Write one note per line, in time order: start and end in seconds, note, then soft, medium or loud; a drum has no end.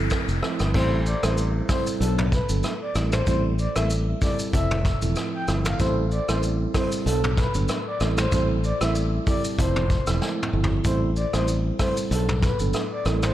0.00 0.39 F3 medium
0.00 0.39 C4 medium
0.00 0.39 E4 medium
0.00 0.39 A4 medium
0.00 noise sweep medium
0.10 kick medium
0.10 cross-stick medium
0.10 shaker medium
0.29 0.40 F1 medium
0.29 shaker medium
0.43 0.72 F3 medium
0.43 0.72 C4 medium
0.43 0.72 E4 medium
0.43 0.72 A4 medium
0.43 cross-stick medium
0.59 0.71 G1 medium
0.59 cross-stick medium
0.59 shaker soft
0.74 1.13 A1 loud
0.74 0.99 G3 medium
0.74 0.99 C4 medium
0.74 0.99 E4 medium
0.74 0.99 A4 loud
0.74 0.90 C5 loud
0.74 kick loud
0.74 crash loud
1.06 1.21 D5 medium
1.06 shaker medium
1.23 1.60 A1 medium
1.23 1.66 G3 medium
1.23 1.66 C4 medium
1.23 1.66 E4 medium
1.23 1.66 A4 medium
1.23 1.36 C5 medium
1.23 cross-stick loud
1.23 shaker medium
1.38 shaker medium
1.69 1.98 G3 medium
1.69 1.98 C4 medium
1.69 1.98 E4 medium
1.69 1.99 A4 medium
1.69 1.84 C5 medium
1.69 kick loud
1.69 cross-stick medium
1.69 open hi-hat medium
1.69 shaker medium
1.87 shaker medium
2.00 2.40 B1 loud
2.00 2.25 F#3 loud
2.00 2.25 B3 medium
2.00 2.25 D4 medium
2.00 2.25 A4 loud
2.00 2.16 A4 medium
2.00 hi-hat pedal medium
2.00 shaker medium
2.18 mid tom medium
2.32 2.47 B4 medium
2.32 kick loud
2.32 shaker medium
2.49 2.61 G1 medium
2.49 2.72 F#3 medium
2.49 2.73 B3 medium
2.49 2.73 D4 medium
2.49 2.73 A4 medium
2.49 shaker medium
2.63 cross-stick medium
2.63 shaker medium
2.82 2.94 D5 medium
2.95 3.21 A1 loud
2.95 3.20 G3 medium
2.95 3.20 C4 medium
2.95 3.20 E4 medium
2.95 3.20 A4 medium
2.95 cross-stick medium
2.95 shaker medium
3.12 3.25 C5 medium
3.12 cross-stick medium
3.12 mid tom medium
3.12 shaker medium
3.27 3.66 A1 loud
3.27 3.51 G3 medium
3.27 3.51 C4 medium
3.27 3.52 E4 medium
3.27 3.52 A4 loud
3.27 3.42 C5 loud
3.27 kick loud
3.27 shaker medium
3.59 3.74 D5 medium
3.59 shaker medium
3.76 4.13 A1 medium
3.76 4.18 G3 medium
3.76 4.18 C4 medium
3.76 4.18 E4 medium
3.76 4.18 A4 medium
3.76 3.88 E5 medium
3.76 cross-stick medium
3.76 shaker medium
3.90 shaker medium
4.21 4.51 G3 medium
4.21 4.51 C4 medium
4.21 4.51 E4 medium
4.21 4.51 A4 medium
4.21 4.37 D5 medium
4.21 kick loud
4.21 open hi-hat medium
4.21 shaker medium
4.39 shaker medium
4.53 4.92 F1 loud
4.53 4.78 F3 medium
4.53 4.78 C4 medium
4.53 4.78 E4 medium
4.53 4.78 A4 loud
4.53 5.00 E5 loud
4.53 kick loud
4.53 hi-hat pedal medium
4.53 shaker medium
4.71 mid tom medium
4.85 kick loud
4.85 mid tom medium
4.85 shaker medium
5.02 5.14 E1 medium
5.02 5.44 F3 medium
5.02 5.44 C4 medium
5.02 5.45 E4 medium
5.02 5.45 A4 medium
5.02 shaker medium
5.16 cross-stick medium
5.16 shaker medium
5.35 5.46 G5 medium
5.48 5.73 G1 medium
5.48 5.77 F3 medium
5.48 5.77 C4 medium
5.48 5.77 E4 medium
5.48 5.77 A4 medium
5.48 cross-stick medium
5.48 shaker medium
5.65 5.78 F5 medium
5.65 cross-stick medium
5.65 mid tom loud
5.65 shaker medium
5.79 6.19 A1 loud
5.79 6.04 G3 loud
5.79 6.04 C4 medium
5.79 6.04 E4 medium
5.79 6.04 A4 loud
5.79 5.95 C5 loud
5.79 kick loud
5.79 shaker medium
6.11 6.26 D5 medium
6.11 shaker medium
6.28 6.65 A1 medium
6.28 6.71 G3 medium
6.28 6.71 C4 medium
6.28 6.71 E4 medium
6.28 6.71 A4 medium
6.28 6.41 C5 medium
6.28 cross-stick loud
6.28 shaker medium
6.43 shaker medium
6.74 7.04 G3 medium
6.74 7.04 C4 medium
6.74 7.04 E4 medium
6.74 7.04 A4 medium
6.74 6.90 C5 medium
6.74 kick loud
6.74 cross-stick loud
6.74 open hi-hat medium
6.74 shaker medium
6.92 shaker loud
7.05 7.45 B1 loud
7.05 7.30 F#3 medium
7.05 7.30 B3 medium
7.05 7.30 D4 medium
7.05 7.30 A4 loud
7.05 7.21 A4 medium
7.05 hi-hat pedal medium
7.05 shaker medium
7.24 mid tom medium
7.37 7.53 B4 medium
7.37 kick loud
7.37 mid tom medium
7.37 shaker medium
7.54 7.66 G1 medium
7.54 7.78 F#3 medium
7.54 7.78 B3 medium
7.54 7.78 D4 medium
7.54 7.78 A4 medium
7.54 shaker medium
7.68 cross-stick medium
7.68 shaker medium
7.87 7.99 D5 medium
8.00 8.26 A1 loud
8.00 8.25 G3 medium
8.00 8.25 C4 medium
8.00 8.25 E4 medium
8.00 8.25 A4 medium
8.00 cross-stick medium
8.00 shaker medium
8.17 8.30 C5 medium
8.17 cross-stick medium
8.17 mid tom medium
8.17 shaker medium
8.32 8.71 A1 loud
8.32 8.56 G3 loud
8.32 8.57 C4 medium
8.32 8.57 E4 medium
8.32 8.57 A4 loud
8.32 8.47 C5 loud
8.32 kick loud
8.32 shaker medium
8.64 8.79 D5 medium
8.64 shaker medium
8.81 9.18 A1 medium
8.81 9.23 G3 medium
8.81 9.23 C4 medium
8.81 9.24 E4 medium
8.81 9.24 A4 medium
8.81 8.94 E5 medium
8.81 cross-stick loud
8.81 shaker medium
8.95 shaker medium
9.27 9.56 G3 medium
9.27 9.56 C4 medium
9.27 9.56 E4 medium
9.27 9.56 A4 medium
9.27 9.42 D5 medium
9.27 kick loud
9.27 open hi-hat medium
9.27 shaker medium
9.44 shaker medium
9.58 9.98 F1 loud
9.58 9.83 F3 medium
9.58 9.83 C4 medium
9.58 9.83 E4 medium
9.58 9.83 A4 loud
9.58 10.05 C5 loud
9.58 kick loud
9.58 hi-hat pedal medium
9.58 shaker medium
9.76 mid tom medium
9.90 kick loud
9.90 shaker medium
10.07 10.19 E1 medium
10.07 10.50 F3 medium
10.07 10.50 C4 medium
10.07 10.50 E4 medium
10.07 10.50 A4 medium
10.07 cross-stick medium
10.07 shaker medium
10.22 snare medium
10.43 mid tom medium
10.53 10.78 G1 loud
10.53 10.82 F3 medium
10.53 10.83 C4 medium
10.53 10.83 E4 medium
10.53 10.83 A4 medium
10.64 floor tom loud
10.84 11.24 A1 loud
10.84 11.09 G3 loud
10.84 11.09 C4 medium
10.84 11.09 E4 medium
10.84 11.09 A4 loud
10.84 11.00 C5 loud
10.84 kick loud
10.84 hi-hat pedal medium
10.84 shaker medium
11.16 11.32 D5 medium
11.16 shaker medium
11.33 11.70 A1 medium
11.33 11.76 G3 medium
11.33 11.76 C4 medium
11.33 11.76 E4 medium
11.33 11.76 A4 medium
11.33 11.46 C5 medium
11.33 cross-stick loud
11.33 shaker medium
11.48 shaker medium
11.79 12.09 G3 medium
11.79 12.09 C4 medium
11.79 12.09 E4 medium
11.79 12.09 A4 medium
11.79 11.95 C5 medium
11.79 kick medium
11.79 cross-stick medium
11.79 open hi-hat medium
11.79 shaker medium
11.97 shaker medium
12.11 12.50 B1 loud
12.11 12.36 F#3 loud
12.11 12.36 B3 medium
12.11 12.36 D4 medium
12.11 12.36 A4 loud
12.11 12.26 A4 loud
12.11 hi-hat pedal medium
12.11 shaker medium
12.29 mid tom medium
12.43 12.58 B4 medium
12.43 kick loud
12.43 mid tom medium
12.43 shaker medium
12.59 12.71 G1 medium
12.59 12.83 F#3 medium
12.59 12.83 B3 medium
12.59 12.83 D4 medium
12.59 12.83 A4 medium
12.59 shaker medium
12.73 cross-stick medium
12.73 shaker medium
12.92 13.04 D5 medium
13.05 13.31 A1 loud
13.05 13.30 G3 medium
13.05 13.30 C4 medium
13.05 13.30 E4 medium
13.05 13.30 A4 medium
13.05 cross-stick medium
13.05 shaker medium
13.22 13.34 C5 medium
13.22 cross-stick medium
13.22 mid tom loud
13.22 shaker medium